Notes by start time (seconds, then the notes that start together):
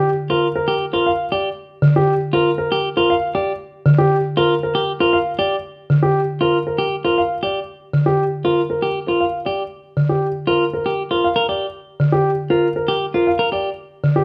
0.30 F4 A#4
0.56 A#4
0.68 G4
0.93 F4 A#4
1.07 F5
1.32 G4 D5
1.82 D3
1.96 G4
2.33 F4 A#4
2.58 A#4
2.72 G4
2.97 F4 A#4
3.10 F5
3.35 G4 D5
3.86 D3
3.98 G4
4.37 F4 A#4
4.63 A#4
4.75 G4
5.00 F4 A#4
5.13 F5
5.39 G4 D5
5.90 D3
6.03 G4
6.41 F4 A#4
6.67 A#4
6.78 G4
7.05 F4 A#4
7.18 F5
7.43 G4 D5
7.93 D3
8.06 G4
8.44 F4 A#4
8.70 A#4
8.82 G4
9.07 F4 A#4
9.21 F5
9.45 G4 D5
9.97 D3
10.09 G4
10.47 F4 A#4
10.73 A#4
10.86 G4
11.11 F4 A#4
11.24 F5
11.36 A#4
11.49 G4 D5
12.00 D3
12.12 G4
12.50 F4 A#4
12.76 A#4
12.88 G4
13.14 F4 A#4
13.27 F5
13.39 A#4
13.52 G4 D5
14.04 D3
14.16 G4